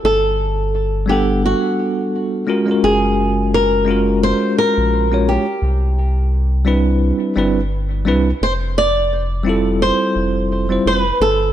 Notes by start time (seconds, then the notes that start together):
0.04 G1 A4
1.06 G3 B3 D4 G4
1.10 A4 F#5
1.46 F#4
2.47 G#3 C#4 F4 F#4 A#4
2.65 G#3 C#4 F4
2.70 F#4 A#4
2.83 F#1 G#4
3.54 A#4
3.85 G#3 C#4 F4
3.89 F#4 A#4
4.23 C5
4.58 A#4
4.78 A#1
5.11 G#3 C#4 F4 F#4 C#5
5.29 G4
5.62 C2
6.65 G3 C4 D4 E4 B4
7.36 G1 G3 C4 D4 E4 B4
8.05 C2 G3 C4 D4 E4 B4
8.42 F1 C5
8.78 D5
9.43 G3 C4 E4
9.48 F4 A4
9.82 C5
10.16 F1
10.69 G3 C4 E4 F4 C5
10.86 F1 B4
11.21 G1 A4